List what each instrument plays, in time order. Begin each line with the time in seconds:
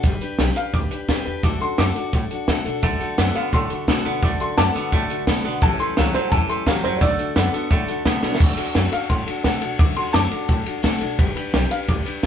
0.03 upright bass G1, steel-string acoustic guitar G3 D4 G4 B4, kick, closed hi-hat
0.21 steel-string acoustic guitar D4 G4 B4, muted upright bass stroke, closed hi-hat
0.38 upright bass B1, steel-string acoustic guitar G3 D4 G4 B4, snare, closed hi-hat
0.56 steel-string acoustic guitar D4 G4 B4, upright piano F5, closed hi-hat
0.74 upright bass D2, steel-string acoustic guitar G3 D4 G4 B4, upright piano D6, kick, closed hi-hat
0.91 steel-string acoustic guitar D4 G4 B4, muted upright bass stroke, closed hi-hat
1.08 upright bass E2, steel-string acoustic guitar G3 D4 G4 B4, kick, snare, closed hi-hat
1.25 upright bass E2, steel-string acoustic guitar D4 G4 B4, closed hi-hat
1.43 upright bass D2, steel-string acoustic guitar D3 A3 D4 F#4 A4, upright piano D6, kick, closed hi-hat
1.60 steel-string acoustic guitar D4 F#4 A4, upright piano C6, muted upright bass stroke, closed hi-hat
1.78 upright bass F#2, steel-string acoustic guitar D3 A3 D4 F#4 A4, upright piano D6, snare, closed hi-hat
1.95 steel-string acoustic guitar D4 F#4 A4, closed hi-hat
2.13 upright bass A2, steel-string acoustic guitar A3 D4 F#4 A4, kick, closed hi-hat
2.30 steel-string acoustic guitar D4 F#4 A4, muted upright bass stroke, closed hi-hat
2.48 upright bass C3, steel-string acoustic guitar D3 A3 D4 F#4 A4, kick, snare, closed hi-hat
2.65 upright bass B2, steel-string acoustic guitar D4 F#4 A4, closed hi-hat
2.83 upright bass D2, steel-string acoustic guitar D3 A3 D4 F#4 A4, clean electric guitar D3 A3, kick, closed hi-hat
3.00 steel-string acoustic guitar D4 F#4 A4, muted upright bass stroke, closed hi-hat
3.18 upright bass F#2, steel-string acoustic guitar D3 A3 D4 F#4 A4, clean electric guitar D3 B3, snare, closed hi-hat
3.35 clean electric guitar D3 B3, steel-string acoustic guitar D4 F#4 A4, upright piano F5, muted upright bass stroke, closed hi-hat
3.53 upright bass A2, clean electric guitar D3 A3, steel-string acoustic guitar A3 D4 F#4 A4, upright piano C6, kick, closed hi-hat
3.70 steel-string acoustic guitar D4 F#4 A4, muted upright bass stroke, closed hi-hat
3.88 upright bass C3, steel-string acoustic guitar D3 A3 D4 F#4 A4, clean electric guitar D3 B3, kick, snare, closed hi-hat
4.05 upright bass B2, clean electric guitar D3 B3, steel-string acoustic guitar D4 F#4 A4, closed hi-hat
4.22 upright bass D2, steel-string acoustic guitar D3 A3 D4 F#4 A4, clean electric guitar D3 A3, upright piano D6, kick, closed hi-hat
4.40 steel-string acoustic guitar D4 F#4 A4, upright piano C6, muted upright bass stroke, closed hi-hat
4.57 upright bass F#2, steel-string acoustic guitar D3 A3 D4 F#4 A4, clean electric guitar D3 B3, upright piano A5 D6, snare, closed hi-hat
4.75 clean electric guitar D3 B3, steel-string acoustic guitar D4 F#4 A4, muted upright bass stroke, closed hi-hat
4.92 upright bass A2, clean electric guitar D3 A3, steel-string acoustic guitar A3 D4 F#4 A4, kick, closed hi-hat
5.10 steel-string acoustic guitar D4 F#4 A4, muted upright bass stroke, closed hi-hat
5.27 upright bass C3, steel-string acoustic guitar D3 A3 D4 F#4 A4, clean electric guitar D3 B3, kick, snare, closed hi-hat
5.44 upright bass B2, clean electric guitar D3 B3, steel-string acoustic guitar D4 F#4 A4, closed hi-hat
5.62 upright bass A1, steel-string acoustic guitar A2 E3 G3 C#4 G4 A4, clean electric guitar A2 E3, upright piano A5, kick, closed hi-hat
5.79 steel-string acoustic guitar G3 C#4 G4 A4, upright piano C6, muted upright bass stroke, closed hi-hat
5.97 upright bass C#2, steel-string acoustic guitar A2 E3 G3 C#4 G4 A4, clean electric guitar A2 F#3, upright piano F5, snare, closed hi-hat
6.14 clean electric guitar A2 F#3, steel-string acoustic guitar G3 C#4 G4 A4, upright piano C5, muted upright bass stroke, closed hi-hat
6.28 steel-string acoustic guitar G3, upright piano G#5 A5
6.32 upright bass E2, clean electric guitar A2 E3, steel-string acoustic guitar C#4 G4 A4, kick, snare, closed hi-hat
6.49 steel-string acoustic guitar G3 C#4 G4 A4, upright piano C6, muted upright bass stroke, closed hi-hat
6.66 upright bass G2, steel-string acoustic guitar A2 E3 G3 C#4 G4 A4, clean electric guitar A2 F#3, upright piano F5, kick, snare, closed hi-hat
6.83 upright bass F#2, clean electric guitar A2 F#3, steel-string acoustic guitar G3 C#4 G4 A4, upright piano C5, closed hi-hat
6.97 steel-string acoustic guitar D3, upright piano C#5
7.01 upright bass D2, clean electric guitar D3 A3, steel-string acoustic guitar A3 D4 F#4 A4, upright piano D5, kick, closed hi-hat
7.18 steel-string acoustic guitar D4 F#4 A4, muted upright bass stroke, closed hi-hat
7.35 upright bass F#2, steel-string acoustic guitar D3 A3 D4 F#4 A4, clean electric guitar D3 B3, snare, closed hi-hat
7.53 clean electric guitar D3 B3, steel-string acoustic guitar D4 F#4 A4, muted upright bass stroke, closed hi-hat
7.70 upright bass A2, clean electric guitar D3 A3, steel-string acoustic guitar A3 D4 F#4 A4, kick, closed hi-hat
7.88 steel-string acoustic guitar D4 F#4 A4, muted upright bass stroke, closed hi-hat
8.05 upright bass C3, steel-string acoustic guitar D3 A3 D4 F#4 A4, clean electric guitar D3 B3, kick, snare, closed hi-hat
8.22 upright bass B2, clean electric guitar D3 B3, steel-string acoustic guitar D4 F#4 A4, snare
8.35 snare
8.40 upright bass D2, steel-string acoustic guitar D3 A3 D4 F#4 A4, kick, crash
8.57 steel-string acoustic guitar D4 F#4 A4, muted upright bass stroke, ride
8.75 upright bass F#2, steel-string acoustic guitar D3 A3 D4 F#4 A4, snare, ride
8.92 steel-string acoustic guitar D4 F#4 A4, upright piano F5, muted upright bass stroke, ride
9.09 upright bass A2, steel-string acoustic guitar A3 D4 F#4 A4, upright piano C6, kick, ride
9.26 steel-string acoustic guitar D4 F#4 A4, muted upright bass stroke, ride
9.44 upright bass C3, steel-string acoustic guitar D3 A3 D4 F#4 A4, kick, snare, ride
9.61 upright bass B2, steel-string acoustic guitar D4 F#4 A4, ride
9.78 upright bass D2, steel-string acoustic guitar D3 A3 D4 F#4 A4, upright piano D6, kick, ride
9.96 steel-string acoustic guitar D4 F#4 A4, upright piano C6, muted upright bass stroke, ride
10.13 upright bass F#2, steel-string acoustic guitar D3 A3 D4 F#4 A4, upright piano A5 D6, snare, ride
10.31 steel-string acoustic guitar D4 F#4 A4, muted upright bass stroke, ride
10.48 upright bass A2, steel-string acoustic guitar A3 D4 F#4 A4, kick, ride
10.66 steel-string acoustic guitar D4 F#4 A4, muted upright bass stroke, ride
10.83 upright bass C3, steel-string acoustic guitar D3 A3 D4 F#4 A4, kick, snare, ride
11.00 upright bass B2, steel-string acoustic guitar D4 F#4 A4, ride
11.18 upright bass G1, steel-string acoustic guitar G3 D4 G4 B4, kick, ride
11.36 steel-string acoustic guitar D4 G4 B4, muted upright bass stroke, ride
11.53 upright bass B1, steel-string acoustic guitar G3 D4 G4 B4, snare, ride
11.71 steel-string acoustic guitar D4 G4 B4, upright piano F5, muted upright bass stroke, ride
11.88 upright bass D2, steel-string acoustic guitar G3 D4 G4 B4, upright piano D6, kick, ride
12.05 steel-string acoustic guitar D4 G4 B4, muted upright bass stroke, ride
12.23 steel-string acoustic guitar G3, snare, ride